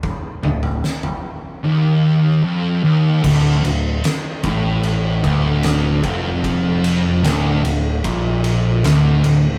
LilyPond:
<<
  \new Staff \with { instrumentName = "Distorted electric guitar" } { \clef bass \time 4/4 \key d \minor \tempo 4 = 75 r8 d,8 r4 ees,4 f,8 ees,8 | d,8 d,8 r8 a,4 d,4 f,8~ | f,4 d,8 d,8 bes,4 d,8 d,8 | }
  \new Staff \with { instrumentName = "Distorted electric guitar" } { \clef bass \time 4/4 \key d \minor r8 d,8 r4 ees,4 f,8 ees,8 | d,8 d,8 r8 a,4 d,4 f,8~ | f,4 d,8 d,8 bes,4 d,8 d,8 | }
  \new Staff \with { instrumentName = "Picked electric bass" } { \clef bass \time 4/4 \key d \minor r8 d,,8 r2. | d,,8 d,,8 r8 a,,4 d,,4 f,,8~ | f,,4 d,,8 d,,8 bes,,4 d,,8 d,,8 | }
  \new DrumStaff \with { instrumentName = "Drums" } \drummode { \time 4/4 <bd tomfh>8 toml16 tomfh16 sn16 tomfh8. r4 r4 | <cymc bd>8 cymr8 <cymr sn>8 <bd cymr>8 cymr8 <bd cymr>8 <cymr sn>8 <bd cymr>8 | <bd cymr>8 cymr8 <cymr sn>8 cymr8 <bd cymr>8 cymr8 <cymr sn>8 cymr8 | }
>>